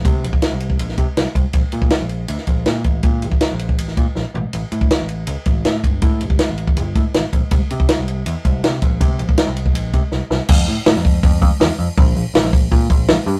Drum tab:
CC |----------------|----------------|----------------|----------------|
RD |x-x-x-x-x-x-x-x-|x-x-x-x-x-x-x-x-|x-x-x-x-x-x-----|x-x-x-x-x-x-x-x-|
HH |----------------|----------------|----------------|----------------|
SD |----o----o--o---|----o----o--o---|----o----o--o---|----o-------o---|
FT |----------------|----------------|--------------o-|----------------|
BD |o--o---o--o---o-|o--o------o---o-|o--o---o--o-----|---o------o---o-|

CC |----------------|----------------|----------------|x---------------|
RD |x-x-x-x-x-x-x-x-|x-x-x-x-x-x-x-x-|x-x-x-x-x-x-----|----------------|
HH |----------------|----------------|----------------|--o-o-o-o-o-o-o-|
SD |----o-------o---|----o-------o---|----o-------o-o-|----oo------o---|
FT |----------------|----------------|----------------|----------------|
BD |o--o---o--o---o-|o--o------o---o-|o--o---o--o-----|o-----o-o-o-----|

CC |----------------|
RD |----------------|
HH |o-o-o-o-o-o-o-o-|
SD |----oo------o---|
FT |----------------|
BD |o-----o-o-o-----|